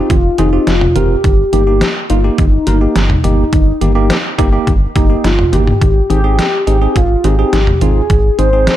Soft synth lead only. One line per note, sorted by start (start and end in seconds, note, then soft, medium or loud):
0.00 0.12 D#4 loud
0.10 0.40 F4 loud
0.39 0.68 D#4 loud
0.67 0.97 F4 loud
0.96 1.52 G4 loud
1.53 2.06 G4 loud
2.10 2.23 F4 loud
2.39 3.20 D#4 loud
3.24 4.34 D#4 loud
4.96 5.26 D#4 loud
5.24 5.54 F4 loud
5.53 6.09 G4 loud
6.10 6.63 G4 loud
6.67 6.97 G4 loud
6.96 7.26 F4 loud
7.24 7.83 G4 loud
7.81 8.38 G#4 loud
8.38 8.77 C5 loud